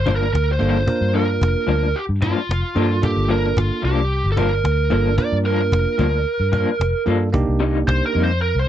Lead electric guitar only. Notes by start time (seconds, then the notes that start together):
0.00 C5
0.16 A#4
0.33 A#4
0.52 C5
0.70 C5
1.16 A#4
1.96 G4
2.23 F4
3.04 G4
3.31 A#4
3.58 F4
3.85 G4
4.32 A4
4.39 A#4
5.19 D5
5.46 A#4
7.88 C5
8.06 A#4
8.24 C5
8.42 A#4
8.59 C5